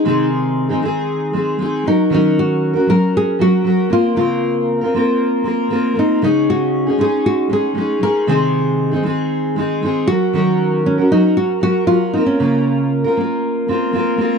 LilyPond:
<<
  \new Staff \with { instrumentName = "Nylon-string guitar" } { \time 4/4 \key bes \minor \tempo 4 = 117 ees'8 r2. ees'8 | ees'8 ges'4 bes'8 aes'8 ges'4 f'8 | f'2. r8 ees'8 | ees'8 ges'4 aes'8 ges'8 aes'4 bes'8 |
aes'2. r8 ges'8~ | ges'4 des'8 ees'8 ges'8 ges'8 f'8 ees'16 des'16~ | des'2. r4 | }
  \new Staff \with { instrumentName = "Steel-string acoustic guitar" } { \time 4/4 \key bes \minor <c ees aes c' ees' aes'>4~ <c ees aes c' ees' aes'>16 <aes c' ees' aes'>16 <aes c' ees' aes'>4 <aes c' ees' aes'>8 <aes c' ees' aes'>8 <ges des' ges' bes'>8 | <ees ges des' ges' bes'>4~ <ees ges des' ges' bes'>16 <des' ges' bes'>16 <ges des' ges' bes'>4 <ges des' ges' bes'>8 <ges des' ges' bes'>8 <bes c' f' bes'>8 | <des bes c' f' bes'>4~ <des bes c' f' bes'>16 <c' f' bes'>16 <bes c' f' bes'>4 <bes c' f' bes'>8 <bes c' f' bes'>8 <bes c' f' bes'>8 | <des aes des' ees' aes'>4~ <des aes des' ees' aes'>16 <des' ees' aes'>16 <aes des' ees' aes'>4 <aes des' ees' aes'>8 <aes des' ees' aes'>8 <aes des' ees' aes'>8 |
<c ees aes c' ees' aes'>4~ <c ees aes c' ees' aes'>16 <aes c' ees' aes'>16 <aes c' ees' aes'>4 <aes c' ees' aes'>8 <aes c' ees' aes'>8 <ges des' ges' bes'>8 | <ees ges des' ges' bes'>4~ <ees ges des' ges' bes'>16 <des' ges' bes'>16 <ges des' ges' bes'>4 <ges des' ges' bes'>8 <ges des' ges' bes'>8 <bes c' f' bes'>8 | <des bes f' bes'>4~ <des bes f' bes'>16 <c' f' bes'>16 <bes f' bes'>4 <bes c' f' bes'>8 <bes c' f' bes'>8 <bes c' f' bes'>8 | }
>>